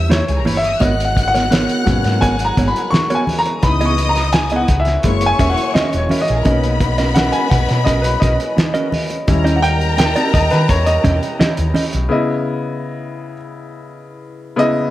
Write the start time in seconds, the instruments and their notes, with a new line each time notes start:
Already playing: fingered electric bass E2, grand piano E3 G3 C#4, string section E5 E6
0.09 clean electric guitar A#3 E4 G4 C#5, grand piano C#5, snare, closed hi-hat, high conga
0.28 fingered electric bass C#2, string section G#4 G#5, muted clean electric guitar stroke, closed hi-hat
0.38 string section A#4 A#5
0.45 fingered electric bass G1, clean electric guitar A#3 E4 G4 C#5, string section B4 B5, open hi-hat, high conga
0.55 string section C#5 C#6, grand piano E5
0.63 string section D#5 D#6, muted clean electric guitar stroke, closed hi-hat
0.72 string section E5 E6
0.80 fingered electric bass G#1, french horn section B2 C#3 G#3 F#4 A#4, clean electric guitar B3 F#4 A#4 C#5, grand piano D#5, string section F#5 F#6, kick, closed hi-hat, muted conga
1.00 closed hi-hat
1.05 grand piano F#5
1.16 muted clean electric guitar stroke, kick, closed hi-hat
1.28 grand piano F#5
1.34 clean electric guitar B3 F#4 A#4 C#5, snare, closed hi-hat
1.51 clean electric guitar B3 F#4 A#4 C#5, snare, closed hi-hat, high conga
1.69 closed hi-hat
1.86 fingered electric bass G#1, grand piano F#3 A#3 B3 C#4, muted clean electric guitar stroke, kick, closed hi-hat, low conga
2.04 fingered electric bass G#2, muted clean electric guitar stroke, snare, closed hi-hat
2.21 fingered electric bass G#1, clean electric guitar B3 F#4 A#4 C#5, grand piano G#5, kick, closed hi-hat, muted conga
2.39 muted clean electric guitar stroke, closed hi-hat
2.45 grand piano A#5
2.57 fingered electric bass G#1, clean electric guitar B3 F#4 A#4 C#5, kick, closed hi-hat, muted conga
2.68 grand piano B5
2.74 muted clean electric guitar stroke, closed hi-hat
2.91 grand piano C#6, muted clean electric guitar stroke, snare, closed hi-hat, high conga
3.10 clean electric guitar B3 F#4 A#4 C#5, closed hi-hat
3.15 grand piano G#5
3.27 muted clean electric guitar stroke, open hi-hat, high conga
3.39 grand piano A#5
3.46 muted clean electric guitar stroke, closed hi-hat
3.63 fingered electric bass C#2, french horn section E3 G#3 D#4, grand piano E3 B3 D#4 B5, string section D#5 D#6, muted clean electric guitar stroke, kick, closed hi-hat, muted conga
3.81 clean electric guitar B3 E4 G#4 D#5, closed hi-hat
3.86 grand piano C#6
3.98 muted clean electric guitar stroke, closed hi-hat
4.09 grand piano A#5
4.15 muted clean electric guitar stroke, snare, closed hi-hat
4.33 grand piano G#5, muted clean electric guitar stroke, snare, closed hi-hat, high conga
4.50 clean electric guitar B3 E4 G#4 D#5, closed hi-hat
4.56 grand piano F#5
4.68 fingered electric bass C#2, muted clean electric guitar stroke, kick, closed hi-hat
4.80 grand piano E5
4.85 muted clean electric guitar stroke, snare, closed hi-hat
5.03 fingered electric bass F#1, french horn section E3 F#3 C#4 E4, grand piano G#3 A#3 E4, string section C#5 C#6, muted clean electric guitar stroke, kick, closed hi-hat, muted conga
5.21 muted clean electric guitar stroke, closed hi-hat
5.26 grand piano G#5
5.39 fingered electric bass E1, clean electric guitar C#4 F#4 A#4 E5, kick, closed hi-hat, muted conga
5.50 grand piano F#5
5.57 muted clean electric guitar stroke, closed hi-hat
5.74 clean electric guitar C#4 F#4 A#4 E5, grand piano D#5, muted fingered electric bass stroke, snare, closed hi-hat, high conga
5.93 fingered electric bass E1, muted clean electric guitar stroke, closed hi-hat
5.97 grand piano C#5
6.09 clean electric guitar C#4 F#4 A#4 E5, string section E4 E5, open hi-hat, high conga
6.19 string section F#4 F#5, grand piano D#5
6.28 fingered electric bass A#1, string section G#4 G#5, muted clean electric guitar stroke, closed hi-hat
6.36 string section A#4 A#5
6.44 fingered electric bass B1, french horn section B2 D#5, grand piano A#3 C#4 D#4, string section B3 B5, clean electric guitar C#4 F#4 A#4 D#5, kick, closed hi-hat, muted conga
6.64 closed hi-hat
6.80 muted clean electric guitar stroke, kick, closed hi-hat
6.98 clean electric guitar C#4 F#4 A#4 D#5, snare, closed hi-hat
7.14 clean electric guitar C#4 F#4 A#4 D#5, grand piano F#5, snare, closed hi-hat, high conga
7.32 grand piano G#5, closed hi-hat
7.50 fingered electric bass B1, grand piano F#5, kick, closed hi-hat, low conga
7.68 fingered electric bass B2, muted clean electric guitar stroke, snare, closed hi-hat
7.84 fingered electric bass B1, clean electric guitar C#4 F#4 A#4 D#5, grand piano D#5, kick, closed hi-hat, muted conga
8.02 grand piano B4, muted clean electric guitar stroke, closed hi-hat
8.20 fingered electric bass B1, clean electric guitar C#4 F#4 A#4 D#5, grand piano D#5, kick, closed hi-hat, muted conga
8.39 muted clean electric guitar stroke, closed hi-hat
8.57 muted clean electric guitar stroke, snare, closed hi-hat, high conga
8.74 clean electric guitar C#4 F#4 A#4 D#5, closed hi-hat
8.92 muted clean electric guitar stroke, open hi-hat, high conga
9.10 muted clean electric guitar stroke, closed hi-hat
9.27 fingered electric bass D#2, french horn section E3 G3, grand piano G3 C#4 E4, string section A#4 A#5, muted clean electric guitar stroke, kick, closed hi-hat, muted conga
9.44 clean electric guitar C#4 E4 G4 D#5, closed hi-hat
9.56 grand piano F#5
9.62 grand piano G5, muted clean electric guitar stroke, closed hi-hat
9.80 muted clean electric guitar stroke, closed hi-hat
9.97 grand piano G5, muted clean electric guitar stroke, snare, closed hi-hat, high conga
10.15 clean electric guitar C#4 E4 G4 D#5, closed hi-hat
10.34 fingered electric bass D#2, grand piano D#5, muted clean electric guitar stroke, kick, closed hi-hat
10.50 fingered electric bass D#3, grand piano B4, muted clean electric guitar stroke, snare, closed hi-hat
10.69 fingered electric bass E2, grand piano C#5, muted clean electric guitar stroke, kick, closed hi-hat
10.86 grand piano D#5, muted clean electric guitar stroke, closed hi-hat
11.04 fingered electric bass E2, clean electric guitar C#4 E4 G4 D#5, kick, closed hi-hat, muted conga, low conga
11.21 muted clean electric guitar stroke, closed hi-hat
11.39 clean electric guitar C#4 E4 G4 D#5, muted fingered electric bass stroke, snare, closed hi-hat, high conga
11.57 fingered electric bass D#2, muted clean electric guitar stroke, closed hi-hat
11.74 clean electric guitar C#4 E4 G4 D#5, open hi-hat, high conga
11.93 fingered electric bass B1, muted clean electric guitar stroke, closed hi-hat
12.09 grand piano C#3 B3 E4 D#5
14.56 grand piano C#3 B3 E4 D#5